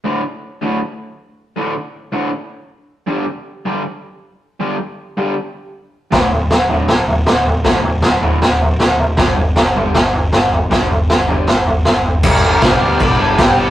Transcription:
<<
  \new Staff \with { instrumentName = "Lead electric guitar" } { \time 4/4 \key g \major \tempo 4 = 158 r1 | r1 | r1 | r1 |
r1 | r1 | r1 | r1 |
f''2 d''8 a'8 g'8 a'8 | }
  \new Staff \with { instrumentName = "Overdriven electric guitar" } { \clef bass \time 4/4 \key g \major <d, a, d>8 r4 <d, a, d>8 r2 | <d, a, d>8 r4 <d, a, d>8 r2 | <g, d g>8 r4 <g, d g>8 r2 | <g, d g>8 r4 <g, d g>8 r2 |
<d, a, d>8 r4 <d, a, d>8 r2 | <d, a, d>8 r4 <d, a, d>8 r2 | <g, d g>8 r4 <g, d g>8 r2 | <g, d g>8 r4 <g, d g>8 r2 |
<g, d g b d' g'>8 <g b d' g'>8 <g b d' g'>8 <g b d' g'>8 <g, d g b d' g'>8 <g b d' g'>4 <g b d' g'>8 | }
  \new Staff \with { instrumentName = "Picked electric bass" } { \clef bass \time 4/4 \key g \major r1 | r1 | r1 | r1 |
d,,8 d,,8 d,,4 d,,8 d,,8 d,,4 | d,,8 d,,8 d,,4 d,,8 d,,8 d,,4 | g,,8 g,,8 g,,4 g,,8 g,,8 g,,4 | g,,8 g,,8 g,,4 g,,8 g,,8 g,,4 |
g,,8 g,,8 g,,8 d,8 g,,8 g,,8 g,,8 g,,8 | }
  \new DrumStaff \with { instrumentName = "Drums" } \drummode { \time 4/4 r4 r4 r4 r4 | r4 r4 r4 r4 | r4 r4 r4 r4 | r4 r4 r4 r4 |
<bd sn tomfh>8 tomfh8 <sn tomfh>8 tomfh8 <sn tomfh>8 tomfh8 <sn tomfh>8 tomfh8 | <bd sn tomfh>8 tomfh8 <sn tomfh>8 tomfh8 <sn tomfh>8 tomfh8 <sn tomfh>8 tomfh8 | <bd sn tomfh>8 tomfh8 <sn tomfh>8 tomfh8 <sn tomfh>8 tomfh8 <sn tomfh>8 tomfh8 | <bd sn tomfh>8 tomfh8 <sn tomfh>8 tomfh8 <sn tomfh>8 tomfh8 <sn tomfh>8 tomfh8 |
<cymc bd>4 <cymc bd sn>4 <cymc bd>4 <cymc bd sn>4 | }
>>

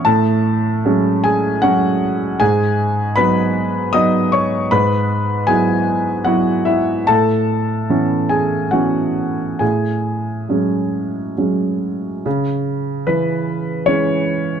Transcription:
<<
  \new Staff \with { instrumentName = "Grand piano" } { \time 3/4 \key cis \minor \tempo 4 = 75 <a a''>4. <gis' gis''>8 <fis' fis''>4 | <gis' gis''>4 <b' b''>4 <dis'' dis'''>8 <cis'' cis'''>8 | <b' b''>4 <gis' gis''>4 <fis' fis''>8 <e' e''>8 | <a' a''>4. <gis' gis''>8 <fis' fis''>4 |
<gis' gis''>2 r4 | r4 b'4 cis''4 | }
  \new Staff \with { instrumentName = "Grand piano" } { \clef bass \time 3/4 \key cis \minor a,4 <fis gis cis'>4 <fis gis cis'>4 | gis,4 <fis b dis'>4 <fis b dis'>4 | gis,4 <fis b e'>4 <fis b e'>4 | a,4 <e b cis'>4 <e b cis'>4 |
a,4 <fis gis cis'>4 <fis gis cis'>4 | cis4 e4 <e gis cis'>4 | }
>>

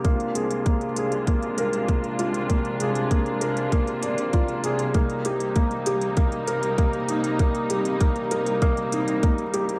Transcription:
<<
  \new Staff \with { instrumentName = "Felt piano" } { \time 4/4 \key c \minor \tempo 4 = 98 bes8 aes'8 bes8 aes'8 bes8 bes'8 bes8 f'8 | bes8 aes'8 bes8 bes'8 bes8 d''8 f'8 aes'8 | bes8 g'8 bes8 g'8 bes8 bes'8 bes8 ees'8 | bes8 g'8 bes8 bes'8 bes8 ees'8 bes8 g'8 | }
  \new Staff \with { instrumentName = "String section" } { \time 4/4 \key c \minor << { <aes d' f'>1~ | <aes d' f'>1 | <g bes ees'>1~ | <g bes ees'>1 | } \\ { c1~ | c1~ | c1~ | c1 | } >> }
  \new Staff \with { instrumentName = "Detuned saw bass" } { \clef bass \time 4/4 \key c \minor r8 c,8 r8 c,8 r8 c,16 c,8 r16 c,8 | r8 c,8 r8 c,8 r8 g,,16 bes,,8 r16 c,8 | r8 c,8 r8 c,8 r8 c,16 c,8 r16 c,8 | r8 c,8 r8 c,8 r8 c,16 c,8 r16 c,8 | }
  \new DrumStaff \with { instrumentName = "Drums" } \drummode { \time 4/4 <hh bd>16 hh16 hh16 hh16 <hh bd>16 hh16 hh16 hh16 <hh bd>16 hh16 hh16 hh16 <hh bd>16 hh16 hh16 hh16 | <hh bd>16 hh16 hh16 hh16 <hh bd>16 hh16 hh16 hh16 <hh bd>16 hh16 hh16 hh16 <hh bd>16 hh16 hh16 hh16 | <hh bd>16 hh16 hh16 hh16 <hh bd>16 hh16 hh16 hh16 <hh bd>16 hh16 hh16 hh16 <hh bd>16 hh16 hh16 hh16 | <hh bd>16 hh16 hh16 hh16 <hh bd>16 hh16 hh16 hh16 <hh bd>16 hh16 hh16 hh16 <hh bd>16 hh16 hh16 hh16 | }
>>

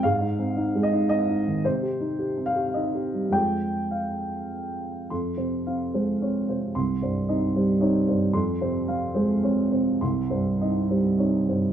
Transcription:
\new Staff \with { instrumentName = "Upright piano" } { \time 3/4 \key f \minor \tempo 4 = 108 << { f''4. ees''8 ees''4 | c''4. f''16. f''32 ees''4 | g''4 f''4 r4 | c'''8 c''8 f''8 c''8 des''8 c''8 |
c'''8 c''8 ees''8 c''8 des''8 c''8 | c'''8 c''8 f''8 c''8 des''8 c''8 | c'''8 c''8 ees''8 c''8 des''8 c''8 | } \\ { \tuplet 3/2 { aes,8 ees'8 c'8 ees'8 aes8 ees'8 c'8 ees'8 ees8 } | \tuplet 3/2 { c8 g'8 ees'8 g'8 c'8 g'8 ees'8 g'8 g8 } | <f, aes c' f'>2. | f,8 c8 c'8 aes8 c'8 c8 |
c,8 g,8 <c' ees'>8 g8 <c' ees'>8 g,8 | f,8 c8 c'8 aes8 c'8 c8 | c,8 g,8 <c' ees'>8 g8 <c' ees'>8 g,8 | } >> }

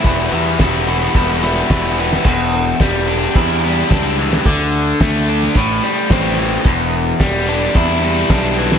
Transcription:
<<
  \new Staff \with { instrumentName = "Overdriven electric guitar" } { \clef bass \time 4/4 \key e \minor \tempo 4 = 109 <e, b, e g b e'>8 <e, b, e g b e'>8 <e, b, e g b e'>8 <e, b, e g b e'>8 <e, b, e g b e'>8 <e, b, e g b e'>8 <e, b, e g b e'>8 <e, b, e g b e'>8 | e,4 g8 d'8 e'8 g8 d'8 e8 | d4 a8 d'8 a,8 g8 c'8 e8 | e,4 g8 d'8 e'8 g8 d'8 e8 | }
  \new Staff \with { instrumentName = "Picked electric bass" } { \clef bass \time 4/4 \key e \minor e,,8 e,8 e,,4 e,,4 e,,4 | e,,4 e,,4 e,4 cis,4 | d,4 d,4 a,,8 r8 a,,4 | e,,4 e,,4 e,4 b,,4 | }
  \new DrumStaff \with { instrumentName = "Drums" } \drummode { \time 4/4 bd8 hh8 <bd sn>8 hh8 bd8 <hh sn>8 <bd sn>8 hh16 sn16 | <cymc bd>8 hh8 <hh bd sn>8 hh8 <hh bd>8 hh8 <hh bd sn>8 hh16 sn16 | <hh bd>8 hh8 <hh bd sn>8 hh16 sn16 <hh bd>8 hh8 <hh bd sn>8 hh8 | <hh bd>8 hh8 <hh bd sn>8 hh8 <hh bd>8 hh8 <hh bd sn>8 hh16 sn16 | }
>>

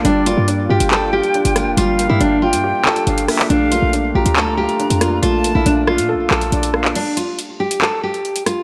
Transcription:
<<
  \new Staff \with { instrumentName = "Flute" } { \time 4/4 \key bes \lydian \tempo 4 = 139 d''4. g''2~ g''8 | f''4. g''4. f''8 e''8 | f''4. bes''2~ bes''8 | a''4. f''8 r4 d''8 f''8 |
r1 | }
  \new Staff \with { instrumentName = "Ambient pad" } { \time 4/4 \key bes \lydian << { <f' d'' g''>1~ | <f' d'' g''>1 | <f' d'' f''>1~ | <f' d'' f''>1 |
r1 | } \\ { g'1~ | g'1~ | g'1~ | g'1 |
r1 | } >> }
  \new Staff \with { instrumentName = "Nylon-string guitar" } { \time 4/4 \key bes \lydian d'8 f'8 r8 g'8 a'8 g'4 f'8 | f'8. e'16 d'8 f'4 a'4. | d'8 f'8 r8 g'8 a'8 g'4 f'8 | f'8. e'16 d'8 f'4 a'4. |
d'8 f'8 r8 g'8 a'8 g'4 f'8 | }
  \new Staff \with { instrumentName = "Felt piano" } { \time 4/4 \key bes \lydian g8 bes8 d'8 f'8 g'8 f'8 d'8 bes8 | g8 bes8 d'8 f'8 g'8 f'8 d'8 bes8 | a8 bes8 d'8 f'8 a8 f'8 d'8 bes8 | a8 bes8 d'8 f'8 a'8 f'8 d'8 bes8 |
r1 | }
  \new Staff \with { instrumentName = "808-style bass" } { \clef bass \time 4/4 \key bes \lydian g,,8. g,8. g,16 g,,4 r8 g,,8 f,,16 | g,,8. g,16 g,,8. g,8 r8. g,,8 r8 | bes,,8. bes,,8. bes,,16 d,8 cis,8 r8 f,8. | bes,,8 a,,16 bes,,16 bes,,8. bes,16. bes,,16. bes,,8 bes,,4 |
r1 | }
  \new DrumStaff \with { instrumentName = "Drums" } \drummode { \time 4/4 hh8 hh8 hh8. hh16 hc8. hh16 hh16 hh16 <hh ss>8 | hh8 hh8 hh8. hh16 r8 hc16 hh16 hh16 hh16 <hho ss>16 hc16 | hh8 hh8 hh8. hh16 hc8. hh16 hh16 hh16 <hh ss>8 | hh8 hh8 hh8 ss16 hh16 r8 hc16 hh16 hh16 hh16 ss16 hc16 |
<cymc hh>8 hh8 hh8. hh16 hc8. hh16 hh16 hh16 <hh ss>8 | }
>>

